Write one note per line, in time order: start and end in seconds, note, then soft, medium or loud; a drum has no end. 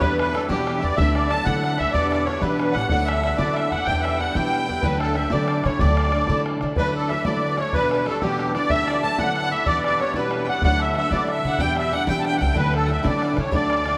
0.00 0.34 E2 medium
0.00 0.43 E2 loud
0.00 0.34 B2 medium
0.00 0.32 G3 medium
0.00 0.32 B3 medium
0.00 0.34 D4 medium
0.00 0.34 E4 medium
0.00 0.17 B4 loud
0.00 0.18 B4 medium
0.00 bodhran medium
0.18 0.34 B4 loud
0.18 0.48 B4 medium
0.18 bodhran medium
0.33 0.48 G3 medium
0.33 0.48 B3 medium
0.33 0.48 D4 medium
0.33 0.47 E4 medium
0.33 0.48 A4 medium
0.33 bodhran medium
0.48 0.83 E2 medium
0.48 0.83 B2 medium
0.48 0.78 E3 medium
0.48 0.82 G3 medium
0.48 0.81 B3 medium
0.48 0.82 D4 medium
0.48 0.80 E4 medium
0.48 0.79 G4 medium
0.48 0.84 G4 medium
0.48 bodhran medium
0.67 bodhran medium
0.79 0.97 B3 soft
0.79 0.97 D4 soft
0.79 0.97 E4 medium
0.79 1.00 D5 medium
0.79 0.83 E5 medium
0.83 0.90 E2 medium
0.83 0.97 G3 soft
0.83 0.97 D5 medium
0.96 1.39 D2 loud
0.96 1.35 D3 medium
0.96 1.29 F#3 medium
0.96 1.30 A3 medium
0.96 1.31 D4 medium
0.96 1.32 E4 medium
0.96 1.14 E5 loud
0.96 1.33 E5 medium
0.96 bodhran loud
1.15 1.31 D5 medium
1.15 bodhran medium
1.30 1.45 F#3 medium
1.30 1.45 A3 medium
1.30 1.44 D4 medium
1.30 1.44 E4 medium
1.30 1.46 A5 loud
1.30 1.48 A5 medium
1.30 bodhran medium
1.44 1.74 D3 loud
1.44 1.81 D3 medium
1.44 1.79 F#3 medium
1.44 1.79 A3 medium
1.44 1.79 D4 medium
1.44 1.78 E4 medium
1.44 1.79 F#5 medium
1.44 1.81 F#5 medium
1.44 bodhran medium
1.64 bodhran medium
1.78 1.86 D2 medium
1.78 1.94 A3 soft
1.78 1.94 D4 soft
1.78 1.94 E4 medium
1.78 1.93 E5 loud
1.78 1.90 E5 medium
1.78 bodhran medium
1.91 2.27 E2 medium
1.91 2.35 E2 medium
1.91 2.27 B2 medium
1.91 2.26 G3 medium
1.91 2.27 B3 medium
1.91 2.28 D4 medium
1.91 2.29 E4 medium
1.91 1.96 C#5 medium
1.91 2.07 D5 loud
1.91 2.12 D5 medium
1.91 bodhran medium
2.09 2.25 D5 medium
2.09 2.28 D5 medium
2.09 bodhran medium
2.25 2.42 G3 medium
2.25 2.42 B3 medium
2.25 2.41 D4 medium
2.25 2.42 C#5 medium
2.25 2.44 C#5 medium
2.25 bodhran medium
2.29 2.41 E4 medium
2.41 2.76 E2 medium
2.41 2.76 B2 medium
2.41 2.71 E3 medium
2.41 2.76 G3 medium
2.41 2.76 B3 medium
2.41 2.75 D4 medium
2.41 2.75 E4 medium
2.41 2.76 B4 medium
2.41 2.75 B4 medium
2.41 bodhran medium
2.60 bodhran medium
2.72 2.82 A1 medium
2.72 2.90 D4 soft
2.72 2.91 E4 medium
2.72 2.87 F#5 loud
2.72 2.90 F#5 medium
2.72 bodhran medium
2.77 2.91 G3 soft
2.77 2.91 B3 soft
2.89 3.32 D2 medium
2.89 3.29 D3 medium
2.89 3.22 F#3 medium
2.89 3.23 A3 medium
2.89 3.25 D4 medium
2.89 3.25 E4 medium
2.89 3.08 F#5 loud
2.89 3.10 F#5 medium
2.89 bodhran medium
3.05 3.21 E5 medium
3.05 3.40 E5 medium
3.05 bodhran medium
3.22 3.39 F#3 medium
3.22 3.39 A3 medium
3.22 3.39 D4 medium
3.22 3.38 E4 medium
3.22 3.37 E5 medium
3.22 bodhran medium
3.37 3.67 D3 medium
3.37 3.75 D3 medium
3.37 3.73 F#3 medium
3.37 3.72 A3 medium
3.37 3.72 D4 medium
3.37 3.71 E4 medium
3.37 3.55 D5 medium
3.37 3.58 D5 medium
3.37 bodhran medium
3.53 3.71 E5 medium
3.53 3.87 E5 medium
3.53 bodhran medium
3.70 3.78 D#2 medium
3.70 3.88 A3 soft
3.70 3.87 D4 soft
3.70 3.87 E4 soft
3.70 3.87 F#5 medium
3.70 bodhran medium
3.84 4.20 E2 medium
3.84 4.29 E2 medium
3.84 4.21 B2 medium
3.84 4.19 G3 medium
3.84 4.19 B3 medium
3.84 4.00 G5 loud
3.84 4.22 G5 medium
3.84 bodhran medium
3.89 4.22 D4 medium
3.89 4.22 E4 medium
3.99 4.18 E5 medium
3.99 4.04 F#5 medium
4.05 bodhran medium
4.17 4.35 G3 soft
4.17 4.35 B3 medium
4.17 4.35 F#5 medium
4.17 4.38 F#5 medium
4.17 bodhran medium
4.22 4.35 D4 medium
4.22 4.35 E4 medium
4.34 4.70 B2 medium
4.34 4.64 E3 medium
4.34 4.69 G3 medium
4.34 4.68 B3 medium
4.34 4.68 D4 medium
4.34 4.68 E4 medium
4.34 4.85 G5 medium
4.34 4.86 G5 medium
4.34 bodhran medium
4.38 4.70 E2 medium
4.53 bodhran medium
4.68 4.75 E2 medium
4.68 4.83 G3 soft
4.68 4.83 B3 medium
4.68 4.83 D4 soft
4.68 4.83 E4 medium
4.81 5.25 D2 loud
4.81 5.21 D3 medium
4.81 5.15 F#3 medium
4.81 5.16 A3 medium
4.81 5.17 D4 medium
4.81 5.18 E4 medium
4.81 4.99 B4 medium
4.81 bodhran medium
4.85 5.01 B4 medium
4.99 5.16 A4 medium
4.99 5.18 A4 medium
4.99 bodhran medium
5.15 5.31 F#3 medium
5.15 5.31 A3 medium
5.15 5.31 D4 medium
5.15 5.30 E4 medium
5.15 5.32 E5 medium
5.15 5.33 E5 medium
5.15 bodhran medium
5.30 5.61 D3 loud
5.30 5.67 D3 medium
5.30 5.67 F#3 medium
5.30 5.66 A3 medium
5.30 5.65 D4 medium
5.30 5.64 E4 medium
5.30 5.66 D5 medium
5.30 5.67 D5 medium
5.30 bodhran medium
5.48 bodhran medium
5.64 5.72 D3 medium
5.64 5.79 A3 soft
5.64 5.80 D4 soft
5.64 5.80 E4 medium
5.64 5.81 C#5 medium
5.64 bodhran medium
5.79 6.22 D2 loud
5.79 6.18 D3 medium
5.79 6.12 F#3 medium
5.79 6.13 A3 medium
5.79 6.14 D4 medium
5.79 6.15 E4 medium
5.79 6.42 D5 loud
5.79 6.43 D5 medium
5.79 bodhran medium
5.97 bodhran medium
6.12 6.29 F#3 medium
6.12 6.29 A3 medium
6.12 6.29 D4 medium
6.12 6.28 E4 medium
6.12 bodhran medium
6.27 6.57 D3 loud
6.27 6.64 D3 medium
6.27 6.63 F#3 medium
6.27 6.62 A3 medium
6.27 6.62 D4 medium
6.27 6.61 E4 medium
6.27 bodhran medium
6.46 bodhran medium
6.61 6.69 D3 medium
6.61 6.77 A3 soft
6.61 6.77 D4 medium
6.61 6.77 E4 medium
6.61 bodhran medium
6.76 7.16 D3 medium
6.76 7.10 F#3 medium
6.76 7.11 A3 medium
6.76 7.12 D4 medium
6.76 7.13 E4 medium
6.76 6.93 B4 medium
6.76 6.94 B4 loud
6.76 bodhran medium
6.95 7.11 A4 medium
7.09 7.26 F#3 medium
7.09 7.26 A3 medium
7.09 7.25 D4 medium
7.09 7.24 E5 medium
7.09 7.27 E5 medium
7.09 bodhran medium
7.13 7.25 E4 medium
7.25 7.62 D3 medium
7.25 7.59 F#3 medium
7.25 7.59 A3 medium
7.25 7.60 D4 medium
7.25 7.58 E4 medium
7.25 7.59 D5 medium
7.25 7.60 D5 medium
7.25 bodhran medium
7.57 7.75 A3 soft
7.57 7.75 D4 soft
7.57 7.74 E4 soft
7.57 7.73 C#5 medium
7.57 7.74 C#5 loud
7.57 bodhran medium
7.73 8.07 E2 medium
7.73 8.07 B2 medium
7.73 8.06 G3 medium
7.73 8.07 B3 medium
7.73 8.08 D4 medium
7.73 8.09 E4 medium
7.73 8.07 B4 medium
7.73 7.90 B4 loud
7.73 bodhran medium
7.91 8.06 B4 medium
7.91 bodhran medium
8.06 8.21 G3 medium
8.06 8.21 B3 medium
8.06 8.22 D4 medium
8.06 8.22 A4 medium
8.06 8.23 A4 medium
8.06 bodhran medium
8.10 8.20 E4 medium
8.22 8.56 E2 medium
8.22 8.56 B2 medium
8.22 8.55 G3 medium
8.22 8.55 B3 medium
8.22 8.55 D4 medium
8.22 8.54 E4 medium
8.22 8.53 G4 medium
8.22 bodhran medium
8.39 bodhran medium
8.54 8.70 G3 soft
8.54 8.70 B3 soft
8.54 8.69 D4 soft
8.54 8.69 E4 medium
8.54 8.71 D5 loud
8.54 8.73 D5 medium
8.54 bodhran medium
8.69 9.07 D3 medium
8.69 9.01 F#3 medium
8.69 9.02 A3 medium
8.69 9.04 D4 medium
8.69 9.04 E4 medium
8.69 8.88 E5 loud
8.69 9.06 E5 loud
8.69 bodhran medium
8.86 9.01 D5 loud
8.86 bodhran medium
9.02 9.18 F#3 medium
9.02 9.18 A3 medium
9.02 9.18 D4 medium
9.02 9.17 E4 medium
9.02 9.17 A5 loud
9.02 9.21 A5 medium
9.02 bodhran medium
9.18 9.53 D3 medium
9.18 9.52 F#3 medium
9.18 9.52 A3 medium
9.18 9.52 D4 medium
9.18 9.50 E4 medium
9.18 9.49 F#5 loud
9.18 9.37 F#5 medium
9.18 bodhran medium
9.36 9.54 F#5 medium
9.36 bodhran medium
9.50 9.66 A3 soft
9.50 9.66 D4 soft
9.50 9.66 E4 medium
9.50 9.67 E5 loud
9.50 9.67 E5 medium
9.66 10.00 E2 medium
9.66 10.00 B2 medium
9.66 9.98 G3 medium
9.66 9.99 B3 medium
9.66 10.00 D4 medium
9.66 10.01 E4 medium
9.66 9.83 D5 loud
9.66 9.84 D5 medium
9.66 bodhran medium
9.84 9.99 D5 loud
9.84 10.02 D5 medium
9.84 bodhran medium
9.99 10.15 G3 medium
9.99 10.15 B3 medium
9.99 10.15 D4 medium
9.99 10.14 E4 medium
9.99 10.14 C#5 medium
9.99 10.16 C#5 medium
9.99 bodhran medium
10.14 10.49 E2 medium
10.14 10.49 B2 medium
10.14 10.48 G3 medium
10.14 10.48 B3 medium
10.14 10.49 D4 medium
10.14 10.47 E4 medium
10.14 10.47 B4 medium
10.14 10.46 B4 medium
10.14 bodhran medium
10.31 bodhran medium
10.45 10.63 D4 soft
10.45 10.63 E4 soft
10.45 10.64 F#5 medium
10.45 10.51 G5 medium
10.45 bodhran medium
10.49 10.64 G3 soft
10.49 10.64 B3 soft
10.49 10.63 F#5 loud
10.62 11.05 D2 medium
10.62 11.01 D3 medium
10.62 10.95 F#3 medium
10.62 10.96 A3 medium
10.62 10.97 D4 medium
10.62 10.98 E4 medium
10.62 10.83 F#5 medium
10.62 10.82 F#5 loud
10.62 bodhran medium
10.80 10.96 E5 medium
10.80 10.95 E5 medium
10.80 bodhran medium
10.95 11.12 F#3 medium
10.95 11.11 A3 medium
10.95 11.12 D4 medium
10.95 11.11 E4 medium
10.95 11.13 E5 medium
10.95 11.11 E5 loud
10.95 bodhran medium
11.11 11.40 D3 medium
11.11 11.47 D3 medium
11.11 11.45 F#3 medium
11.11 11.45 A3 medium
11.11 11.45 D4 medium
11.11 11.44 E4 medium
11.11 11.28 D5 medium
11.11 11.30 D5 medium
11.11 bodhran medium
11.28 11.61 E5 medium
11.28 11.45 E5 medium
11.28 bodhran medium
11.44 11.51 D3 loud
11.44 11.60 A3 soft
11.44 11.59 D4 soft
11.44 11.59 E4 soft
11.44 11.61 F#5 medium
11.59 11.92 E2 medium
11.59 12.01 E2 loud
11.59 11.93 B2 medium
11.59 11.90 G3 medium
11.59 11.91 B3 medium
11.59 11.92 D4 medium
11.59 11.93 E4 medium
11.59 11.77 G5 medium
11.59 11.77 G5 loud
11.59 bodhran medium
11.76 11.95 E5 medium
11.76 11.94 E5 medium
11.76 bodhran medium
11.92 12.07 G3 medium
11.92 12.06 B3 medium
11.92 12.07 D4 medium
11.92 12.06 E4 medium
11.92 12.08 F#5 medium
11.92 12.09 F#5 medium
11.92 bodhran medium
12.07 12.41 E2 medium
12.07 12.41 B2 medium
12.07 12.36 E3 loud
12.07 12.40 G3 medium
12.07 12.40 B3 medium
12.07 12.40 D4 medium
12.07 12.39 E4 medium
12.07 12.25 G5 medium
12.07 12.21 G5 medium
12.07 bodhran medium
12.19 12.25 A5 medium
12.25 12.40 G5 medium
12.25 12.37 G5 medium
12.25 bodhran medium
12.37 12.54 D4 soft
12.37 12.54 E4 medium
12.37 12.41 F#5 medium
12.37 12.58 G5 medium
12.41 12.48 C#2 loud
12.41 12.54 G3 soft
12.41 12.54 B3 medium
12.41 12.55 G5 loud
12.41 bodhran medium
12.53 12.98 D2 medium
12.53 12.92 D3 medium
12.53 12.87 F#3 medium
12.53 12.88 A3 medium
12.53 12.89 D4 medium
12.53 12.88 E4 medium
12.53 12.75 B4 medium
12.53 bodhran medium
12.58 12.74 B4 loud
12.74 12.87 A4 medium
12.74 12.91 A4 medium
12.74 bodhran medium
12.86 13.03 F#3 medium
12.86 13.02 A3 medium
12.86 13.02 D4 medium
12.86 13.02 E4 medium
12.86 12.92 F#5 medium
12.86 bodhran medium
12.90 13.04 E5 medium
12.90 13.06 E5 medium
13.03 13.40 D3 medium
13.03 13.33 D3 loud
13.03 13.40 F#3 medium
13.03 13.39 A3 medium
13.03 13.37 D4 medium
13.03 13.36 E4 medium
13.03 13.50 D5 medium
13.03 13.33 D5 medium
13.03 bodhran medium
13.22 bodhran medium
13.34 13.44 D3 medium
13.34 13.51 D4 medium
13.34 13.51 E4 medium
13.34 13.38 B4 medium
13.34 bodhran medium
13.39 13.51 A3 soft
13.39 13.55 C#5 medium
13.51 13.94 D2 medium
13.51 13.85 D3 medium
13.51 13.84 F#3 medium
13.51 13.85 A3 medium
13.51 13.86 D4 medium
13.51 13.86 E4 medium
13.51 13.98 D5 medium
13.51 13.98 D5 loud
13.51 bodhran medium
13.70 bodhran medium
13.85 13.98 F#3 medium
13.85 13.98 A3 medium
13.85 13.98 D4 medium
13.85 13.98 E4 medium
13.85 bodhran medium